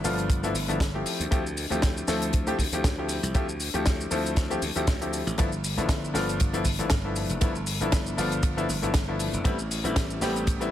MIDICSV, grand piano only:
0, 0, Header, 1, 2, 480
1, 0, Start_track
1, 0, Tempo, 508475
1, 1241, Time_signature, 4, 2, 24, 8
1, 10112, End_track
2, 0, Start_track
2, 0, Title_t, "Grand piano"
2, 0, Program_c, 0, 0
2, 35, Note_on_c, 0, 53, 98
2, 38, Note_on_c, 0, 57, 88
2, 39, Note_on_c, 0, 59, 86
2, 42, Note_on_c, 0, 62, 87
2, 44, Note_on_c, 0, 65, 105
2, 379, Note_off_c, 0, 53, 0
2, 381, Note_off_c, 0, 57, 0
2, 381, Note_off_c, 0, 59, 0
2, 383, Note_off_c, 0, 62, 0
2, 383, Note_off_c, 0, 65, 0
2, 407, Note_on_c, 0, 53, 94
2, 409, Note_on_c, 0, 57, 88
2, 412, Note_on_c, 0, 59, 90
2, 414, Note_on_c, 0, 62, 89
2, 418, Note_on_c, 0, 64, 107
2, 488, Note_off_c, 0, 53, 0
2, 490, Note_off_c, 0, 57, 0
2, 491, Note_off_c, 0, 59, 0
2, 492, Note_off_c, 0, 62, 0
2, 494, Note_off_c, 0, 64, 0
2, 643, Note_on_c, 0, 53, 84
2, 646, Note_on_c, 0, 57, 71
2, 648, Note_on_c, 0, 59, 75
2, 651, Note_on_c, 0, 62, 74
2, 653, Note_on_c, 0, 64, 87
2, 726, Note_off_c, 0, 53, 0
2, 728, Note_off_c, 0, 57, 0
2, 729, Note_off_c, 0, 59, 0
2, 731, Note_off_c, 0, 62, 0
2, 731, Note_off_c, 0, 64, 0
2, 888, Note_on_c, 0, 53, 74
2, 890, Note_on_c, 0, 57, 68
2, 892, Note_on_c, 0, 60, 69
2, 895, Note_on_c, 0, 64, 69
2, 897, Note_on_c, 0, 67, 85
2, 1213, Note_off_c, 0, 53, 0
2, 1214, Note_off_c, 0, 57, 0
2, 1215, Note_off_c, 0, 60, 0
2, 1216, Note_off_c, 0, 64, 0
2, 1217, Note_off_c, 0, 67, 0
2, 1236, Note_on_c, 0, 53, 102
2, 1236, Note_on_c, 0, 57, 95
2, 1240, Note_on_c, 0, 60, 92
2, 1241, Note_on_c, 0, 64, 95
2, 1244, Note_on_c, 0, 67, 115
2, 1335, Note_off_c, 0, 53, 0
2, 1335, Note_off_c, 0, 57, 0
2, 1337, Note_off_c, 0, 60, 0
2, 1337, Note_off_c, 0, 64, 0
2, 1339, Note_off_c, 0, 67, 0
2, 1605, Note_on_c, 0, 53, 82
2, 1611, Note_on_c, 0, 57, 77
2, 1612, Note_on_c, 0, 60, 77
2, 1613, Note_on_c, 0, 64, 76
2, 1615, Note_on_c, 0, 67, 88
2, 1932, Note_off_c, 0, 53, 0
2, 1934, Note_off_c, 0, 57, 0
2, 1935, Note_off_c, 0, 60, 0
2, 1935, Note_off_c, 0, 64, 0
2, 1936, Note_off_c, 0, 67, 0
2, 1958, Note_on_c, 0, 53, 99
2, 1962, Note_on_c, 0, 57, 90
2, 1963, Note_on_c, 0, 60, 83
2, 1967, Note_on_c, 0, 64, 85
2, 1967, Note_on_c, 0, 69, 106
2, 2300, Note_off_c, 0, 53, 0
2, 2302, Note_off_c, 0, 57, 0
2, 2303, Note_off_c, 0, 60, 0
2, 2305, Note_off_c, 0, 64, 0
2, 2305, Note_off_c, 0, 69, 0
2, 2329, Note_on_c, 0, 53, 98
2, 2331, Note_on_c, 0, 57, 92
2, 2334, Note_on_c, 0, 60, 93
2, 2336, Note_on_c, 0, 64, 89
2, 2337, Note_on_c, 0, 67, 113
2, 2409, Note_off_c, 0, 53, 0
2, 2410, Note_off_c, 0, 57, 0
2, 2412, Note_off_c, 0, 60, 0
2, 2413, Note_off_c, 0, 64, 0
2, 2414, Note_off_c, 0, 67, 0
2, 2575, Note_on_c, 0, 53, 82
2, 2576, Note_on_c, 0, 57, 74
2, 2578, Note_on_c, 0, 60, 77
2, 2581, Note_on_c, 0, 64, 76
2, 2586, Note_on_c, 0, 67, 89
2, 2653, Note_off_c, 0, 53, 0
2, 2653, Note_off_c, 0, 57, 0
2, 2654, Note_off_c, 0, 60, 0
2, 2655, Note_off_c, 0, 64, 0
2, 2658, Note_off_c, 0, 67, 0
2, 2813, Note_on_c, 0, 53, 74
2, 2815, Note_on_c, 0, 57, 71
2, 2819, Note_on_c, 0, 60, 68
2, 2820, Note_on_c, 0, 64, 70
2, 2822, Note_on_c, 0, 67, 85
2, 3135, Note_off_c, 0, 53, 0
2, 3137, Note_off_c, 0, 57, 0
2, 3138, Note_off_c, 0, 60, 0
2, 3139, Note_off_c, 0, 64, 0
2, 3140, Note_off_c, 0, 67, 0
2, 3157, Note_on_c, 0, 53, 106
2, 3160, Note_on_c, 0, 57, 97
2, 3161, Note_on_c, 0, 60, 96
2, 3163, Note_on_c, 0, 64, 90
2, 3166, Note_on_c, 0, 67, 117
2, 3255, Note_off_c, 0, 53, 0
2, 3257, Note_off_c, 0, 57, 0
2, 3257, Note_off_c, 0, 60, 0
2, 3258, Note_off_c, 0, 64, 0
2, 3260, Note_off_c, 0, 67, 0
2, 3528, Note_on_c, 0, 53, 83
2, 3528, Note_on_c, 0, 57, 76
2, 3532, Note_on_c, 0, 60, 75
2, 3536, Note_on_c, 0, 64, 77
2, 3536, Note_on_c, 0, 67, 91
2, 3853, Note_off_c, 0, 53, 0
2, 3853, Note_off_c, 0, 57, 0
2, 3855, Note_off_c, 0, 60, 0
2, 3857, Note_off_c, 0, 64, 0
2, 3857, Note_off_c, 0, 67, 0
2, 3878, Note_on_c, 0, 53, 96
2, 3878, Note_on_c, 0, 57, 86
2, 3882, Note_on_c, 0, 60, 88
2, 3886, Note_on_c, 0, 64, 84
2, 3887, Note_on_c, 0, 69, 99
2, 4220, Note_off_c, 0, 53, 0
2, 4221, Note_off_c, 0, 57, 0
2, 4223, Note_off_c, 0, 60, 0
2, 4224, Note_off_c, 0, 64, 0
2, 4225, Note_off_c, 0, 69, 0
2, 4247, Note_on_c, 0, 53, 100
2, 4251, Note_on_c, 0, 57, 92
2, 4252, Note_on_c, 0, 60, 88
2, 4254, Note_on_c, 0, 64, 90
2, 4258, Note_on_c, 0, 67, 109
2, 4329, Note_off_c, 0, 53, 0
2, 4330, Note_off_c, 0, 57, 0
2, 4331, Note_off_c, 0, 60, 0
2, 4332, Note_off_c, 0, 64, 0
2, 4334, Note_off_c, 0, 67, 0
2, 4487, Note_on_c, 0, 53, 80
2, 4491, Note_on_c, 0, 57, 73
2, 4492, Note_on_c, 0, 60, 76
2, 4495, Note_on_c, 0, 64, 74
2, 4500, Note_on_c, 0, 67, 91
2, 4569, Note_off_c, 0, 53, 0
2, 4570, Note_off_c, 0, 57, 0
2, 4571, Note_off_c, 0, 60, 0
2, 4572, Note_off_c, 0, 64, 0
2, 4575, Note_off_c, 0, 67, 0
2, 4730, Note_on_c, 0, 53, 77
2, 4731, Note_on_c, 0, 57, 70
2, 4734, Note_on_c, 0, 60, 70
2, 4735, Note_on_c, 0, 64, 69
2, 4737, Note_on_c, 0, 67, 80
2, 5054, Note_off_c, 0, 53, 0
2, 5054, Note_off_c, 0, 57, 0
2, 5056, Note_off_c, 0, 60, 0
2, 5056, Note_off_c, 0, 64, 0
2, 5057, Note_off_c, 0, 67, 0
2, 5077, Note_on_c, 0, 53, 99
2, 5078, Note_on_c, 0, 57, 92
2, 5082, Note_on_c, 0, 59, 94
2, 5082, Note_on_c, 0, 62, 90
2, 5086, Note_on_c, 0, 64, 110
2, 5175, Note_off_c, 0, 53, 0
2, 5176, Note_off_c, 0, 57, 0
2, 5177, Note_off_c, 0, 59, 0
2, 5178, Note_off_c, 0, 62, 0
2, 5179, Note_off_c, 0, 64, 0
2, 5448, Note_on_c, 0, 53, 81
2, 5451, Note_on_c, 0, 57, 76
2, 5453, Note_on_c, 0, 59, 77
2, 5455, Note_on_c, 0, 62, 72
2, 5458, Note_on_c, 0, 64, 88
2, 5773, Note_off_c, 0, 53, 0
2, 5774, Note_off_c, 0, 57, 0
2, 5775, Note_off_c, 0, 59, 0
2, 5776, Note_off_c, 0, 62, 0
2, 5778, Note_off_c, 0, 64, 0
2, 5792, Note_on_c, 0, 53, 97
2, 5795, Note_on_c, 0, 57, 85
2, 5796, Note_on_c, 0, 59, 86
2, 5800, Note_on_c, 0, 62, 88
2, 5802, Note_on_c, 0, 65, 103
2, 6138, Note_off_c, 0, 53, 0
2, 6139, Note_off_c, 0, 57, 0
2, 6140, Note_off_c, 0, 59, 0
2, 6141, Note_off_c, 0, 62, 0
2, 6143, Note_off_c, 0, 65, 0
2, 6165, Note_on_c, 0, 53, 97
2, 6169, Note_on_c, 0, 57, 91
2, 6172, Note_on_c, 0, 59, 90
2, 6173, Note_on_c, 0, 62, 94
2, 6177, Note_on_c, 0, 64, 103
2, 6247, Note_off_c, 0, 53, 0
2, 6249, Note_off_c, 0, 57, 0
2, 6251, Note_off_c, 0, 59, 0
2, 6252, Note_off_c, 0, 62, 0
2, 6254, Note_off_c, 0, 64, 0
2, 6407, Note_on_c, 0, 53, 82
2, 6409, Note_on_c, 0, 57, 76
2, 6410, Note_on_c, 0, 59, 74
2, 6414, Note_on_c, 0, 62, 74
2, 6417, Note_on_c, 0, 64, 94
2, 6488, Note_off_c, 0, 53, 0
2, 6489, Note_off_c, 0, 57, 0
2, 6490, Note_off_c, 0, 59, 0
2, 6492, Note_off_c, 0, 62, 0
2, 6493, Note_off_c, 0, 64, 0
2, 6649, Note_on_c, 0, 53, 77
2, 6652, Note_on_c, 0, 57, 68
2, 6654, Note_on_c, 0, 59, 71
2, 6659, Note_on_c, 0, 62, 67
2, 6661, Note_on_c, 0, 64, 79
2, 6973, Note_off_c, 0, 53, 0
2, 6975, Note_off_c, 0, 57, 0
2, 6976, Note_off_c, 0, 59, 0
2, 6978, Note_off_c, 0, 62, 0
2, 6979, Note_off_c, 0, 64, 0
2, 6992, Note_on_c, 0, 53, 97
2, 6994, Note_on_c, 0, 57, 91
2, 6999, Note_on_c, 0, 59, 94
2, 7001, Note_on_c, 0, 62, 94
2, 7002, Note_on_c, 0, 64, 107
2, 7093, Note_off_c, 0, 53, 0
2, 7094, Note_off_c, 0, 57, 0
2, 7096, Note_off_c, 0, 59, 0
2, 7097, Note_off_c, 0, 62, 0
2, 7098, Note_off_c, 0, 64, 0
2, 7370, Note_on_c, 0, 53, 82
2, 7373, Note_on_c, 0, 57, 76
2, 7375, Note_on_c, 0, 59, 74
2, 7377, Note_on_c, 0, 62, 76
2, 7380, Note_on_c, 0, 64, 95
2, 7694, Note_off_c, 0, 53, 0
2, 7695, Note_off_c, 0, 57, 0
2, 7696, Note_off_c, 0, 59, 0
2, 7697, Note_off_c, 0, 62, 0
2, 7699, Note_off_c, 0, 64, 0
2, 7715, Note_on_c, 0, 53, 94
2, 7718, Note_on_c, 0, 57, 84
2, 7720, Note_on_c, 0, 59, 87
2, 7721, Note_on_c, 0, 62, 83
2, 7725, Note_on_c, 0, 65, 100
2, 8059, Note_off_c, 0, 53, 0
2, 8060, Note_off_c, 0, 57, 0
2, 8061, Note_off_c, 0, 59, 0
2, 8062, Note_off_c, 0, 62, 0
2, 8064, Note_off_c, 0, 65, 0
2, 8088, Note_on_c, 0, 53, 99
2, 8091, Note_on_c, 0, 57, 89
2, 8095, Note_on_c, 0, 59, 92
2, 8096, Note_on_c, 0, 62, 90
2, 8097, Note_on_c, 0, 64, 106
2, 8169, Note_off_c, 0, 53, 0
2, 8170, Note_off_c, 0, 57, 0
2, 8172, Note_off_c, 0, 59, 0
2, 8173, Note_off_c, 0, 62, 0
2, 8173, Note_off_c, 0, 64, 0
2, 8327, Note_on_c, 0, 53, 85
2, 8330, Note_on_c, 0, 57, 76
2, 8333, Note_on_c, 0, 59, 74
2, 8335, Note_on_c, 0, 62, 73
2, 8337, Note_on_c, 0, 64, 89
2, 8409, Note_off_c, 0, 53, 0
2, 8410, Note_off_c, 0, 57, 0
2, 8411, Note_off_c, 0, 59, 0
2, 8412, Note_off_c, 0, 62, 0
2, 8413, Note_off_c, 0, 64, 0
2, 8568, Note_on_c, 0, 53, 80
2, 8571, Note_on_c, 0, 57, 69
2, 8574, Note_on_c, 0, 59, 70
2, 8576, Note_on_c, 0, 62, 70
2, 8577, Note_on_c, 0, 64, 85
2, 8893, Note_off_c, 0, 53, 0
2, 8894, Note_off_c, 0, 57, 0
2, 8896, Note_off_c, 0, 59, 0
2, 8897, Note_off_c, 0, 62, 0
2, 8897, Note_off_c, 0, 64, 0
2, 8913, Note_on_c, 0, 55, 106
2, 8916, Note_on_c, 0, 57, 92
2, 8918, Note_on_c, 0, 59, 94
2, 8919, Note_on_c, 0, 60, 97
2, 8923, Note_on_c, 0, 64, 113
2, 9013, Note_off_c, 0, 55, 0
2, 9015, Note_off_c, 0, 57, 0
2, 9015, Note_off_c, 0, 59, 0
2, 9016, Note_off_c, 0, 60, 0
2, 9018, Note_off_c, 0, 64, 0
2, 9287, Note_on_c, 0, 55, 82
2, 9291, Note_on_c, 0, 57, 73
2, 9293, Note_on_c, 0, 59, 73
2, 9293, Note_on_c, 0, 60, 74
2, 9297, Note_on_c, 0, 64, 94
2, 9612, Note_off_c, 0, 55, 0
2, 9614, Note_off_c, 0, 57, 0
2, 9615, Note_off_c, 0, 59, 0
2, 9615, Note_off_c, 0, 60, 0
2, 9617, Note_off_c, 0, 64, 0
2, 9640, Note_on_c, 0, 55, 96
2, 9640, Note_on_c, 0, 57, 87
2, 9644, Note_on_c, 0, 59, 85
2, 9647, Note_on_c, 0, 60, 86
2, 9648, Note_on_c, 0, 67, 107
2, 9981, Note_off_c, 0, 55, 0
2, 9981, Note_off_c, 0, 57, 0
2, 9983, Note_off_c, 0, 59, 0
2, 9985, Note_off_c, 0, 60, 0
2, 9986, Note_off_c, 0, 67, 0
2, 10010, Note_on_c, 0, 55, 100
2, 10012, Note_on_c, 0, 57, 90
2, 10014, Note_on_c, 0, 59, 91
2, 10017, Note_on_c, 0, 60, 94
2, 10021, Note_on_c, 0, 64, 110
2, 10090, Note_off_c, 0, 55, 0
2, 10091, Note_off_c, 0, 57, 0
2, 10092, Note_off_c, 0, 59, 0
2, 10093, Note_off_c, 0, 60, 0
2, 10095, Note_off_c, 0, 64, 0
2, 10112, End_track
0, 0, End_of_file